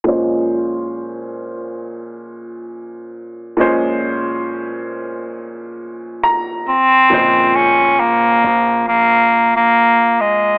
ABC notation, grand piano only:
X:1
M:4/4
L:1/8
Q:"Swing 16ths" 1/4=68
K:Bbm
V:1 name="Grand piano"
z8 | z6 b2 | z8 |]
V:2 name="Grand piano" clef=bass
[B,,F,A,Dc]8 | [B,,F,A,Dc]6- [B,,F,A,Dc] z | [B,,D,F,A,c]8 |]